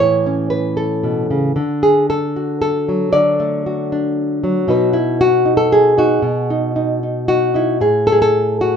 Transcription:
nylon-string guitar
Already playing: E3
0.00 A2 C#5
0.26 C#4
0.50 B4
0.77 A4
1.03 B2
1.30 C#3
1.56 D3
1.83 G#4
2.10 A4
2.36 F#4
2.62 A4
2.88 F#3
3.13 D3 D5
3.40 A3
3.66 F#4
3.92 D4
4.44 F#3
4.68 B2 D#4 F#4 B4
4.93 E4
5.21 F#4
5.46 D#4
5.57 A4
5.72 G#4
5.98 D#4 F#4
6.22 B2
6.50 D#4
6.76 D#4
7.03 D#4
7.28 D#4 F#4
7.54 D#4 E4
7.80 A2 G#4
8.07 A4
8.12 G#4
8.22 A4
8.61 F#4

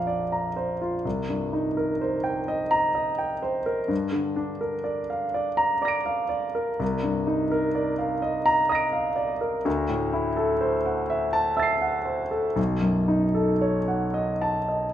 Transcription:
grand piano
Already playing: A#1 F2 D4 F4 C5 D5 F5 A#5
0.07 D5
0.32 A#5
0.56 C5
0.82 F4
1.05 C2
1.29 G2
1.53 D#4
1.77 A#4
2.01 C5
2.24 G5
2.48 D#5
2.71 A#5
2.95 D#5
3.18 G5
3.42 C5
3.66 A#4
3.88 G2
4.12 D3
4.36 D4
4.61 A#4
4.84 D5
5.10 F5
5.34 D5
5.57 A#5
5.82 D5 D6 A#6
5.88 D7
6.06 F5
6.29 D5
6.55 A#4
6.79 C2
7.03 G2
7.27 D#4
7.51 A#4
7.75 D5
7.98 F5
8.22 D#5
8.46 A#5
8.69 D#5 D#6 A#6
8.75 D7
8.93 F5
9.16 D5
9.41 A#4
9.65 D2
9.89 A2
10.13 E4
10.36 A4
10.61 C5
10.86 F#5
11.10 E5
11.33 A5
11.57 E5 E6 A6
11.63 C7
11.81 F#5
12.05 C5
12.31 A4
12.56 B1
12.81 F#2
13.08 D#4
13.34 A4
13.61 C#5
13.88 F#5
14.14 D#5
14.42 A5
14.68 D#5

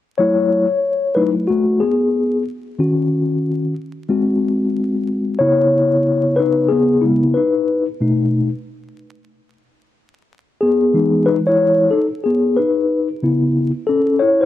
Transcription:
tine electric piano
0.17 F#3 A3 E4 C#5
1.15 F#3 A3 D#4 E4 B4
1.48 A3 F#4
1.80 B3 G#4
2.79 D#3 C#4 F#4
4.09 G#3 C4 F#4
5.39 C#3 B3 E4 C#5
6.36 D#4 B4
6.69 B3 G#4
7.01 C#3 G#3 B3 E4
7.34 D#4 B4
8.00 B2 A3 D#4
10.61 B3 G#4
10.94 E3 G#3 D#4
11.26 D#4 B4
11.47 E4 C#5
11.91 D#4 A4
12.24 B3 G#4
12.56 D#4 B4
13.22 C#3 B3 E4
13.87 C#4 A4
14.19 E4 C#5
14.41 C5

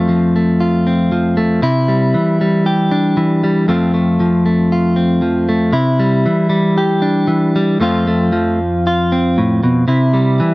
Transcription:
clean electric guitar
Already playing: F2 A3 C4 F4
0.09 F3
0.36 A3
0.60 F4
0.87 C4
1.12 F3
1.37 A3
1.62 C3 E4
1.88 G3
2.14 E3
2.41 G3
2.66 G4
2.91 D4
3.17 E3
3.44 G3
3.68 F2 F3 A3 C4 F4
3.94 A3
4.20 F3
4.46 A3
4.72 F4
4.96 C4
5.22 F3
5.49 A3
5.72 C3 E4
5.99 G3
6.26 E3
6.49 G3
6.78 G4
7.02 D4
7.27 E3
7.56 G3
7.80 F2 F3 A3 C4 F4
8.07 A3
8.32 F3
8.87 F4
9.12 C4
9.38 A2
9.63 B2
9.88 C3 E4
10.14 G3
10.40 E3

